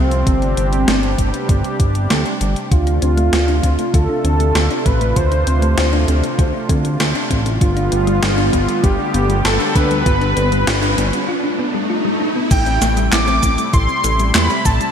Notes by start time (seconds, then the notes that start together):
Already playing: C2 C3 F3 A3 C4 F4
0.11 closed hi-hat
0.27 G1 G3 D4 G4, kick, closed hi-hat
0.42 closed hi-hat
0.57 G1, closed hi-hat
0.73 closed hi-hat
0.88 G1, snare, closed hi-hat
1.03 closed hi-hat
1.18 G1, kick, closed hi-hat
1.29 B3
1.34 closed hi-hat
1.49 G1, kick, closed hi-hat
1.64 closed hi-hat
1.80 G1, kick, closed hi-hat
1.95 closed hi-hat
2.10 D2, snare, closed hi-hat
2.26 closed hi-hat
2.41 G1, closed hi-hat
2.56 closed hi-hat
2.71 D2 C3 A3 D4 F4, kick, closed hi-hat, riser
2.87 D4, closed hi-hat
3.02 D2 C4, closed hi-hat
3.17 A3, closed hi-hat
3.33 D2 F4, snare, closed hi-hat
3.48 D4, closed hi-hat
3.63 D2 C4, kick, closed hi-hat
3.79 A3, closed hi-hat
3.94 D2 F4 A4, kick, closed hi-hat
4.09 D4
4.24 D2 C4, closed hi-hat
4.40 A3, closed hi-hat
4.55 D2 F4, snare, closed hi-hat
4.70 D4, closed hi-hat
4.86 A1 C4 B4, kick, closed hi-hat
5.01 A3, closed hi-hat
5.16 D2 F4 C5, kick, closed hi-hat
5.32 D4, closed hi-hat
5.47 D2 C4, closed hi-hat
5.62 A3, closed hi-hat
5.78 D2 F4, snare, closed hi-hat
5.93 D4, closed hi-hat
6.08 D2 C4, closed hi-hat
6.23 A3, closed hi-hat
6.39 D2 F4, kick, closed hi-hat
6.54 D4
6.69 D2 C4, kick, closed hi-hat
6.85 A3, closed hi-hat
7.00 D2 F4, snare, closed hi-hat
7.15 D4, closed hi-hat
7.31 A1 C4, kick, closed hi-hat
7.46 A3, closed hi-hat
7.61 G1 D3 G3 B3 F4, kick, closed hi-hat
7.76 D4, closed hi-hat
7.92 G1 B3, closed hi-hat
8.07 G3, closed hi-hat
8.22 G1 F4, snare, closed hi-hat
8.38 D4, closed hi-hat
8.53 G1 B3, kick, closed hi-hat
8.68 G3, closed hi-hat
8.83 G1 F4 G4, kick, closed hi-hat
8.99 D4
9.14 G1 B3, closed hi-hat
9.30 G3, closed hi-hat
9.45 G1 F4 A4, snare, closed hi-hat
9.60 D4, closed hi-hat
9.75 D2 B3 B4, kick, closed hi-hat
9.91 G3, closed hi-hat
10.06 G1 F4, kick, closed hi-hat
10.21 D4, closed hi-hat
10.37 G1 B3, closed hi-hat
10.52 G3, closed hi-hat
10.67 G1 F4, snare, closed hi-hat
10.83 D4, closed hi-hat
10.98 G1 B3, closed hi-hat
11.13 G3, closed hi-hat
11.28 F4, swell
11.44 D4
11.59 B3
11.74 G3
11.90 F4
12.05 G3
12.20 D4
12.36 B3
12.51 A1 C3 G3 A3 E4 G5, kick, closed hi-hat, crash, cabasa
12.66 C4, closed hi-hat, cabasa
12.82 A1 A3, snare, closed hi-hat, cabasa
12.97 G3, closed hi-hat, cabasa
13.12 A1 E4 D6, snare, clap, closed hi-hat, cabasa
13.28 C4, closed hi-hat, cabasa
13.43 A1 A3, kick, closed hi-hat, cabasa
13.58 G3, closed hi-hat, cabasa
13.73 A1 E4 C6, kick, closed hi-hat, cabasa
13.89 C4, cabasa
14.04 A1 A3, closed hi-hat, cabasa
14.19 G3, closed hi-hat, cabasa
14.35 E2 E4 B5, snare, clap, closed hi-hat, cabasa
14.50 C4, closed hi-hat, cabasa
14.65 A1 A3 A5, kick, closed hi-hat, cabasa
14.81 G3, closed hi-hat, cabasa